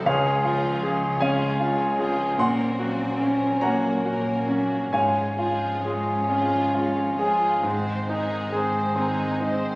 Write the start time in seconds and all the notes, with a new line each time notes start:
0.06 C#2 C#3 F3 G#3 C#4 F4 G#4 C#5 F5
0.44 F3 F4 G#4
0.82 G#3 C#4 F4 G#4
1.19 F3 G#3 C#4 F4 G#4 C#5 F5 G#5
1.57 G#3 C#4 F4
1.99 F3 F4 G#4
2.37 A#1 A#2 F#3 A#3 C4 C#4 A#4 F#5 C6
2.78 F#3 A#3 F#4
3.18 A#3 C#4 A#4
3.60 F#3 A#3 F#4 C#5 F#5 A#5
3.65 A#3
4.03 A#3 C#4 F#4 A#4
4.46 F#3 A#3 C#4 F#4
4.90 G#1 G#2 F3 G#3 C#4 F4 C#5 F5 G#5
5.38 F3 F4 G#4
5.83 G#3 C#4 F4 G#4
6.29 F3 C#4 F4 G#4
6.74 G#3 C#4 F4
7.19 F3 F4 G#4
7.63 G#2 D#3 G#3 C4 C5
8.09 D#3 D#4 G#4
8.51 G#3 C4 G#4 C5
8.96 D#3 C4 D#4 G#4
9.40 G#3 C4 D#4 C5